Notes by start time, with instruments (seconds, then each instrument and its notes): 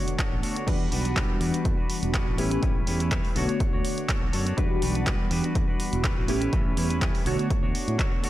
Already playing: analog polysynth D3 A3 B3 F#4 C#5, clean electric guitar D4 F#4 C#5
0.08 closed hi-hat
0.18 clean electric guitar A3 D4 F#4 C#5, kick, clap, closed hi-hat
0.32 fingered electric bass A1
0.42 clean electric guitar A3 D4 F#4 C#5, open hi-hat
0.55 clean electric guitar D4 F#4 C#5, closed hi-hat
0.67 fingered electric bass E2, analog polysynth E3 G3 B3 D4 F#4, clean electric guitar G3 D4 B4, kick, closed hi-hat, crash
0.91 fingered electric bass B1, clean electric guitar G3 D4 F#4 B4, open hi-hat
1.04 clean electric guitar D4 F#4 B4, closed hi-hat
1.16 clean electric guitar G3 D4 F#4 B4, kick, clap, closed hi-hat
1.40 fingered electric bass E2, clean electric guitar G3 D4 F#4 B4, open hi-hat
1.54 closed hi-hat
1.65 fingered electric bass E2, kick, closed hi-hat
1.77 clean electric guitar D4 F#4 B4
1.90 open hi-hat
2.03 fingered electric bass E1, closed hi-hat
2.13 clean electric guitar G3 D4 F#4 B4, kick, clap, closed hi-hat
2.26 fingered electric bass A1, clean electric guitar D4 F#4 B4
2.37 analog polysynth E3 A3 B3 C#4 G4, clean electric guitar G3 C#4 E4 B4, open hi-hat
2.51 clean electric guitar C#4 E4 B4, closed hi-hat
2.62 fingered electric bass A1, clean electric guitar G3 C#4 E4 B4, kick, closed hi-hat
2.86 fingered electric bass E2, clean electric guitar G3 C#4 E4 B4, open hi-hat
3.00 clean electric guitar C#4 E4 B4, closed hi-hat
3.11 clean electric guitar G3 C#4 E4 B4, kick, clap, closed hi-hat
3.25 open hi-hat
3.35 fingered electric bass B1, analog polysynth D3 A3 B3 F#4 C#5, clean electric guitar A3 D4 F#4 C#5, open hi-hat
3.48 clean electric guitar D4 F#4 C#5, closed hi-hat
3.60 kick, closed hi-hat
3.73 fingered electric bass D2, clean electric guitar D4 F#4 C#5
3.85 open hi-hat
3.98 closed hi-hat
4.09 clean electric guitar A3 D4 F#4 C#5, kick, clap, closed hi-hat
4.22 fingered electric bass B1, clean electric guitar D4 F#4 C#5
4.33 fingered electric bass F#2, clean electric guitar A3 D4 F#4 C#5, open hi-hat
4.46 clean electric guitar D4 F#4 C#5, closed hi-hat
4.57 fingered electric bass E2, analog polysynth E3 G3 B3 D4 F#4, clean electric guitar G3 D4 F#4 B4, kick, closed hi-hat
4.82 fingered electric bass B1, clean electric guitar G3 D4 F#4 B4, open hi-hat
4.95 clean electric guitar D4 F#4 B4, closed hi-hat
5.06 clean electric guitar G3 D4 F#4 B4, kick, clap, closed hi-hat
5.30 fingered electric bass E2, clean electric guitar G3 D4 F#4 B4, open hi-hat
5.43 clean electric guitar D4 F#4 B4, closed hi-hat
5.55 fingered electric bass E2, kick, closed hi-hat
5.68 clean electric guitar D4 F#4 B4
5.80 open hi-hat
5.93 fingered electric bass E1, closed hi-hat
6.04 clean electric guitar G3 D4 F#4 B4, kick, clap, closed hi-hat
6.16 fingered electric bass A1, clean electric guitar D4 F#4 B4
6.28 analog polysynth E3 A3 B3 C#4 G4, clean electric guitar G3 C#4 E4 B4, open hi-hat
6.41 clean electric guitar C#4 E4 B4, closed hi-hat
6.52 fingered electric bass A1, clean electric guitar G3 C#4 E4 B4, kick, closed hi-hat
6.77 fingered electric bass E2, clean electric guitar G3 C#4 E4 B4, open hi-hat
6.90 clean electric guitar C#4 E4 B4, closed hi-hat
7.01 clean electric guitar G3 C#4 E4 B4, kick, clap, closed hi-hat
7.15 open hi-hat
7.25 fingered electric bass B1, analog polysynth D3 A3 B3 F#4 C#5, clean electric guitar A3 D4 F#4 C#5, open hi-hat
7.38 clean electric guitar D4 F#4 C#5, closed hi-hat
7.50 kick, closed hi-hat
7.63 fingered electric bass D2, clean electric guitar D4 F#4 C#5
7.75 open hi-hat
7.88 fingered electric bass A2, closed hi-hat
7.98 clean electric guitar A3 D4 F#4 C#5, kick, clap, closed hi-hat
8.11 clean electric guitar D4 F#4 C#5
8.23 clean electric guitar A3 D4 F#4 C#5, open hi-hat